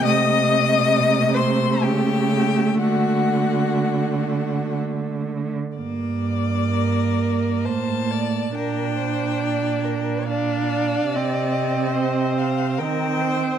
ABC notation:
X:1
M:3/4
L:1/8
Q:1/4=69
K:Gm
V:1 name="Violin"
e'3 c' g2 | ^f4 z2 | d4 a2 | g4 f2 |
e3 f g2 |]
V:2 name="Violin"
e3 c G2 | ^F4 z2 | z2 B2 c d | B c d B d2- |
d2 c2 B c |]
V:3 name="Viola"
A,6- | A,6 | B,6 | D4 D2 |
C4 C2 |]
V:4 name="Cello" clef=bass
C,4 ^C,2 | D,6 | G,,4 A,,2 | B,,6 |
C,4 E,2 |]